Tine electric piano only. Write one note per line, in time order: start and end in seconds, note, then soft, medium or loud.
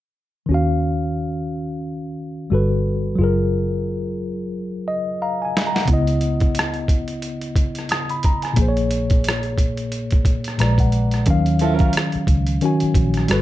0.46 2.45 D#3 medium
0.46 2.47 C#4 medium
0.52 2.48 F#4 medium
0.52 2.50 F5 medium
2.50 3.18 G3 medium
2.50 3.19 F#4 soft
2.50 3.19 A4 medium
2.54 3.20 B4 medium
3.15 5.49 F#3 medium
3.15 5.50 F4 medium
3.21 5.52 G#4 medium
3.21 5.53 A#4 medium
4.88 5.19 D#5 medium
5.22 5.42 F5 medium
5.22 5.40 A#5 soft
5.42 5.44 G#5 medium
5.42 5.65 G#5 medium
5.67 5.87 A#5 medium
5.75 6.06 F#5 medium
5.85 7.85 C#3 medium
5.85 7.86 B3 medium
5.91 7.87 E4 medium
5.91 7.89 D#5 medium
7.91 8.09 D#6 soft
8.10 8.24 B5 medium
8.25 8.43 A#5 medium
8.43 8.75 G#5 medium
8.54 10.54 A#2 medium
8.54 10.55 A#3 medium
8.59 10.56 G#4 medium
8.59 8.67 C5 medium
8.69 10.61 C#5 medium
10.58 11.26 A#2 medium
10.58 11.27 G#3 medium
10.58 11.28 B4 medium
10.58 10.78 A#5 medium
10.62 11.28 D5 medium
10.80 11.24 F#5 medium
11.26 12.39 D#3 medium
11.26 12.40 F#3 medium
11.26 12.40 C#4 medium
11.30 12.41 F5 medium
12.62 13.29 D#3 medium
12.62 13.30 C#4 medium
12.62 13.28 F#4 medium
12.62 13.31 G#5 medium
13.28 13.42 G3 medium
13.28 13.42 F#4 medium
13.28 13.42 A4 medium
13.32 13.42 B4 medium